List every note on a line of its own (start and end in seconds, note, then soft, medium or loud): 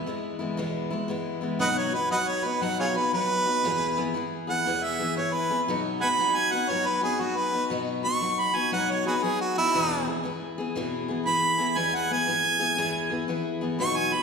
0.06 0.40 E3 medium
0.06 0.40 G#3 medium
0.06 0.39 B3 medium
0.06 0.38 E4 medium
0.39 0.57 E3 soft
0.39 0.58 G#3 medium
0.39 0.58 B3 soft
0.39 0.58 E4 medium
0.57 0.91 E2 medium
0.57 0.91 B2 medium
0.57 0.92 E3 medium
0.57 0.91 G#3 medium
0.57 0.90 B3 medium
0.57 0.89 E4 medium
0.90 1.07 E3 medium
0.90 1.08 G#3 medium
0.90 1.09 B3 medium
0.90 1.09 E4 medium
1.08 1.42 E3 medium
1.08 1.42 G#3 medium
1.08 1.41 B3 medium
1.08 1.40 E4 medium
1.41 1.59 E3 soft
1.41 1.59 G#3 medium
1.41 1.59 B3 medium
1.41 1.60 E4 medium
1.59 1.93 B2 medium
1.59 1.93 F#3 medium
1.59 1.93 B3 medium
1.59 1.93 D#4 medium
1.59 1.91 F#4 medium
1.59 1.68 B4 medium
1.59 1.69 D#5 medium
1.59 1.79 F#5 loud
1.78 1.95 C#5 medium
1.92 2.10 B3 soft
1.92 2.11 D#4 medium
1.92 2.11 F#4 medium
1.92 2.11 B4 medium
2.10 2.44 F#3 medium
2.10 2.44 B3 medium
2.10 2.43 D#4 medium
2.10 2.42 F#4 medium
2.10 2.18 B4 medium
2.10 2.18 D#5 medium
2.10 2.30 F#5 loud
2.29 2.46 C#5 medium
2.43 2.61 B3 soft
2.43 2.62 D#4 soft
2.43 2.61 F#4 medium
2.43 2.64 B4 medium
2.61 2.94 B2 medium
2.61 2.95 F#3 medium
2.61 2.95 B3 medium
2.61 2.95 D#4 medium
2.61 2.93 F#4 medium
2.61 2.79 F#5 medium
2.80 2.88 F4 medium
2.80 2.86 G#4 medium
2.80 2.99 C#5 medium
2.94 3.13 B3 soft
2.94 3.13 D#4 soft
2.94 3.13 F#4 medium
2.94 3.13 B4 medium
3.13 3.46 F#3 medium
3.13 3.47 B3 medium
3.13 3.46 D#4 medium
3.13 3.44 F#4 medium
3.13 4.12 B4 loud
3.46 3.64 B3 soft
3.46 3.64 D#4 medium
3.46 3.64 F#4 soft
3.64 3.97 E2 medium
3.64 3.97 B2 medium
3.64 3.97 E3 medium
3.64 3.97 B3 medium
3.64 3.97 E4 medium
3.64 3.95 G#4 medium
3.97 4.13 E3 soft
3.97 4.14 B3 medium
3.97 4.15 E4 medium
3.97 4.15 G#4 medium
4.14 4.47 E3 medium
4.14 4.48 B3 medium
4.14 4.47 E4 medium
4.14 4.46 G#4 medium
4.47 4.66 E3 soft
4.47 4.66 B3 soft
4.47 4.66 E4 soft
4.47 4.65 G#4 medium
4.47 4.85 F#5 medium
4.66 4.99 E2 medium
4.66 4.99 B2 medium
4.66 4.99 E3 medium
4.66 5.00 B3 medium
4.66 4.98 E4 medium
4.66 4.98 G#4 medium
4.84 5.16 E5 medium
4.99 5.15 E3 soft
4.99 5.16 B3 soft
4.99 5.17 E4 medium
4.99 5.17 G#4 medium
5.16 5.49 E3 medium
5.16 5.50 B3 medium
5.16 5.50 E4 medium
5.16 5.48 G#4 medium
5.16 5.35 C#5 medium
5.34 5.61 B4 medium
5.50 5.68 E3 soft
5.50 5.68 B3 soft
5.50 5.68 E4 medium
5.50 5.67 G#4 soft
5.68 6.01 B2 medium
5.68 6.01 F#3 medium
5.68 6.02 B3 medium
5.68 6.01 D#4 medium
5.68 5.99 F#4 medium
6.01 6.18 B3 soft
6.01 6.19 D#4 soft
6.01 6.18 F#4 medium
6.01 6.09 F#5 medium
6.01 6.08 G#5 medium
6.01 6.37 B5 medium
6.18 6.51 F#3 medium
6.18 6.52 B3 medium
6.18 6.52 D#4 medium
6.18 6.50 F#4 medium
6.35 6.53 G#5 medium
6.52 6.69 B3 soft
6.52 6.70 D#4 soft
6.52 6.69 F#4 medium
6.52 6.71 F#5 medium
6.69 7.02 B2 medium
6.69 7.03 F#3 medium
6.69 7.03 B3 medium
6.69 7.02 D#4 medium
6.69 7.00 F#4 medium
6.69 6.88 C#5 medium
6.86 7.03 B4 medium
7.01 7.19 B3 soft
7.01 7.20 D#4 soft
7.01 7.19 F#4 medium
7.01 7.22 G#4 medium
7.19 7.53 F#3 medium
7.19 7.53 B3 medium
7.19 7.53 D#4 medium
7.19 7.39 F#4 medium
7.19 7.51 F#4 medium
7.38 7.64 B4 medium
7.52 7.70 B3 soft
7.52 7.71 D#4 soft
7.52 7.71 F#4 medium
7.70 8.03 B2 medium
7.70 8.04 F#3 medium
7.70 8.04 B3 medium
7.70 8.03 D#4 medium
7.70 8.02 F#4 medium
8.03 8.21 B3 soft
8.03 8.22 D#4 soft
8.03 8.21 F#4 medium
8.03 8.41 C#6 medium
8.21 8.54 F#3 medium
8.21 8.55 B3 medium
8.21 8.54 D#4 medium
8.21 8.52 F#4 medium
8.40 8.58 B5 medium
8.53 8.71 B3 soft
8.53 8.72 D#4 soft
8.53 8.72 F#4 medium
8.53 8.72 G#5 medium
8.71 9.05 B2 medium
8.71 9.05 F#3 medium
8.71 9.05 B3 medium
8.71 9.05 D#4 medium
8.71 9.04 F#4 medium
8.71 8.93 F#5 medium
8.91 9.06 C#5 medium
9.05 9.23 B3 soft
9.05 9.23 D#4 soft
9.05 9.23 F#4 medium
9.05 9.15 F#4 medium
9.05 9.14 G#4 medium
9.05 9.25 B4 medium
9.23 9.56 F#3 medium
9.23 9.56 B3 medium
9.23 9.56 D#4 medium
9.23 9.54 F#4 medium
9.23 9.40 G#4 medium
9.41 9.57 F#4 medium
9.56 9.74 B3 soft
9.56 9.75 D#4 soft
9.56 10.07 E4 loud
9.56 9.74 F#4 medium
9.74 10.07 E2 medium
9.74 10.07 B2 medium
9.74 10.07 E3 medium
9.74 10.08 B3 medium
9.74 10.07 E4 medium
9.74 10.06 G#4 medium
10.07 10.22 E3 soft
10.07 10.23 B3 soft
10.07 10.24 E4 soft
10.07 10.25 G#4 soft
10.24 10.57 E3 medium
10.24 10.58 B3 medium
10.24 10.58 E4 medium
10.24 10.57 G#4 medium
10.58 10.75 E3 soft
10.58 10.75 B3 soft
10.58 10.76 E4 soft
10.58 10.76 G#4 medium
10.75 11.08 E2 medium
10.75 11.09 B2 medium
10.75 11.09 E3 medium
10.75 11.09 B3 medium
10.75 11.08 E4 medium
10.75 11.07 G#4 loud
11.08 11.24 E3 medium
11.08 11.26 B3 medium
11.08 11.27 E4 medium
11.08 11.26 G#4 medium
11.26 11.59 E3 medium
11.26 11.59 B3 medium
11.26 11.58 E4 medium
11.26 11.57 G#4 medium
11.26 11.79 B5 loud
11.58 11.75 E3 soft
11.58 11.76 B3 soft
11.58 11.77 E4 soft
11.58 11.76 G#4 medium
11.76 12.09 E2 medium
11.76 12.10 B2 medium
11.76 12.10 E3 medium
11.76 12.10 B3 medium
11.76 12.09 E4 medium
11.76 12.08 G#4 medium
11.76 11.96 G#5 medium
11.95 12.14 F#5 medium
12.09 12.25 E3 soft
12.09 12.26 B3 soft
12.09 12.27 E4 soft
12.09 12.27 G#4 medium
12.09 13.10 G#5 loud
12.27 12.60 E3 medium
12.27 12.60 B3 medium
12.27 12.59 E4 medium
12.27 12.58 G#4 medium
12.59 12.77 E3 soft
12.59 12.77 B3 soft
12.59 12.78 E4 soft
12.59 12.77 G#4 medium
12.78 13.11 E2 medium
12.78 13.11 B2 medium
12.78 13.11 E3 medium
12.78 13.11 B3 medium
12.78 13.10 E4 medium
12.78 13.09 G#4 loud
13.10 13.27 E3 soft
13.10 13.28 B3 medium
13.10 13.29 E4 medium
13.10 13.28 G#4 medium
13.28 13.61 E3 medium
13.28 13.62 B3 medium
13.28 13.61 E4 medium
13.28 13.60 G#4 medium
13.61 13.79 E3 soft
13.61 13.79 B3 medium
13.61 13.80 E4 medium
13.61 13.79 G#4 medium
13.79 14.12 B2 medium
13.79 14.13 F#3 medium
13.79 14.13 B3 medium
13.79 14.12 D#4 medium
13.79 14.11 F#4 medium
13.79 13.99 C#6 loud
13.97 14.15 G#5 medium
14.12 14.23 B3 soft
14.12 14.23 D#4 soft
14.12 14.23 F#4 medium
14.12 14.23 B5 medium